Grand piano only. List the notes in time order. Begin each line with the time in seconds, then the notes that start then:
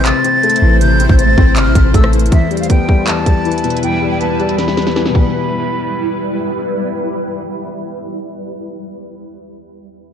Already playing: C3 C4 C5
0.06 C3
0.24 C4
0.43 A3
0.62 E3
0.81 C3
1.00 C4
1.19 C5
1.38 C4
1.56 C3
1.75 C4
1.95 A3
2.13 E3
2.32 E2
2.51 G3
2.70 B3
2.89 G3
3.07 E2
3.26 G3
3.45 E3
3.64 B2
3.83 E2
4.02 G3
4.21 B3
4.40 G3
4.58 E2
4.77 G3
4.96 E3
5.09 B2
5.13 E3
5.17 G3 B3